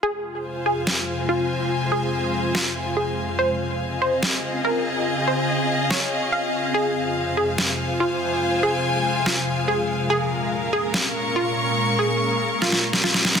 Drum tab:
SD |--------o-------|--------o-------|--------o-------|--------o-------|

SD |--------o-------|--------o-------|--------o-------|--------oo-ooooo|